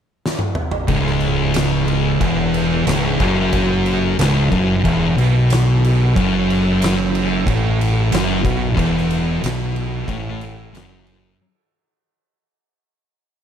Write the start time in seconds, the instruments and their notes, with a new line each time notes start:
0.26 snare
0.39 high tom
0.55 mid tom
0.71 floor tom
0.88 fingered electric bass C#1, distorted electric guitar C#2, kick, crash
1.06 snare
1.20 crash
1.54 snare, crash
1.88 crash
2.20 fingered electric bass E1, distorted electric guitar E2, kick, crash
2.54 crash
2.87 fingered electric bass C#1, distorted electric guitar C#2, snare, crash
3.19 fingered electric bass F#1, distorted electric guitar F#2, kick, crash
3.52 kick, crash
3.86 crash
4.19 fingered electric bass C#1, distorted electric guitar C#2, snare, crash
4.50 fingered electric bass F#1, distorted electric guitar F#2, kick, crash
4.84 fingered electric bass E1, distorted electric guitar E2, kick, crash
5.17 fingered electric bass B1, distorted electric guitar B2, crash
5.50 snare, crash
5.84 crash
6.16 fingered electric bass F#1, distorted electric guitar F#2, kick, crash
6.50 crash
6.82 snare, crash
7.15 crash
7.47 fingered electric bass A1, distorted electric guitar A2, kick, crash
7.81 crash
8.12 fingered electric bass F#1, distorted electric guitar F#2, snare, crash
8.44 fingered electric bass B1, distorted electric guitar B2, kick, crash
8.77 fingered electric bass E1, distorted electric guitar E2, kick, crash
8.97 snare
9.10 crash
9.42 fingered electric bass B1, distorted electric guitar B2, snare, crash
9.76 crash
10.08 fingered electric bass A1, distorted electric guitar A2, kick, crash
10.41 crash
10.72 fingered electric bass F#1, distorted electric guitar F#2, crash
10.77 snare
11.07 crash